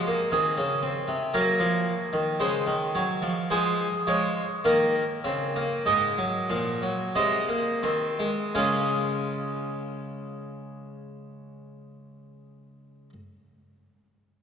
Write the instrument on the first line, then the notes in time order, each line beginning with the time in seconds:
harpsichord
Already playing: F3 C5 D#5
0.07 A#3
0.32 D#3 C4 G#4
0.58 C#3
0.82 C4
1.08 C3
1.34 F#3 A#3 A#4 C#5
1.60 F3
2.13 D#3
2.40 C#3 G#3 C5
2.67 D#3
2.95 F#3 C#5
3.22 F3
3.50 F3 G#3 G#4 C5
4.07 F3 G#3 C#5
4.65 D#3 A#3 A#4
5.24 C#3 C4
5.56 A#3
5.86 G#2 G#3 D#5
6.18 F#3
6.49 A#2 F3
6.82 F#3
7.15 C3 G#3 C5 D#5
7.48 A#3
7.83 D#3 C4
8.19 G#3
8.55 C#3 G#3 C#4 F4 G#4 F5